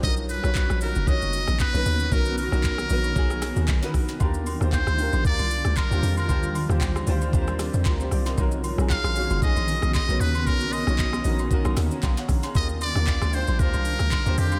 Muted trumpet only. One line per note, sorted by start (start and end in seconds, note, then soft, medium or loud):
0.04 0.15 D#5 loud
0.30 0.78 B4 loud
0.82 1.09 A#4 medium
1.08 1.60 D#5 loud
1.60 2.14 B4 loud
2.12 2.38 A#4 loud
2.38 3.91 A#4 loud
4.73 5.22 C5 loud
5.26 5.78 D5 loud
5.77 6.17 A#4 loud
6.18 6.66 A#4 medium
8.91 9.39 F5 loud
9.42 9.91 D#5 loud
9.94 10.22 D#5 loud
10.20 10.48 B4 medium
10.47 10.74 A#4 loud
10.72 11.51 D#5 loud
12.56 12.68 D#5 loud
12.82 13.36 D5 loud
13.34 13.61 C5 loud
13.60 14.40 A#4 loud
14.38 14.60 G4 loud